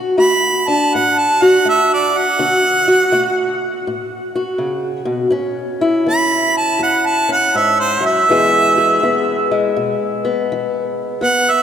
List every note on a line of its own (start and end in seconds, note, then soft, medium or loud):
0.00 0.12 D3 medium
0.00 0.67 D4 medium
0.00 0.18 F#4 medium
0.18 0.86 A3 medium
0.18 1.40 F#4 medium
0.18 0.70 B5 loud
0.68 2.37 D4 medium
0.68 0.96 A5 medium
0.94 1.62 A2 medium
0.94 1.20 F#5 medium
1.18 1.44 A5 medium
1.42 2.37 F#4 medium
1.42 1.66 F#5 medium
1.65 2.34 A3 medium
1.69 1.91 E5 loud
1.94 2.20 D5 medium
2.18 3.60 F#5 loud
2.39 3.08 D3 medium
2.39 2.87 F#4 medium
2.88 3.12 F#4 medium
3.12 3.81 A3 medium
3.12 4.34 F#4 medium
3.87 4.56 A2 medium
4.35 5.31 F#4 medium
4.58 5.05 C#3 medium
5.05 5.30 B2 medium
5.31 6.01 A2 medium
5.31 6.07 C#4 medium
5.81 8.31 E4 medium
6.07 6.76 E3 medium
6.07 7.28 C#4 medium
6.07 6.56 B5 loud
6.57 6.81 A5 medium
6.79 7.49 E2 medium
6.79 7.07 F#5 medium
7.06 7.29 A5 medium
7.29 8.25 C#4 medium
7.29 7.58 F#5 medium
7.55 8.00 G#2 medium
7.55 7.80 E5 medium
7.80 8.03 C5 medium
8.01 8.27 F#2 medium
8.06 9.48 E5 medium
8.29 8.97 E2 medium
8.29 9.03 E3 medium
8.29 9.51 G#3 medium
8.29 9.03 B3 medium
8.29 8.77 G#4 medium
8.78 11.19 G#4 medium
9.03 9.71 E3 medium
9.03 10.23 B3 medium
9.51 11.20 G#3 medium
9.76 10.44 B2 medium
10.25 11.21 B3 medium
10.52 11.18 E3 medium
11.21 11.63 E2 medium
11.21 11.63 B3 medium
11.21 11.52 F#5 loud
11.51 11.63 E5 medium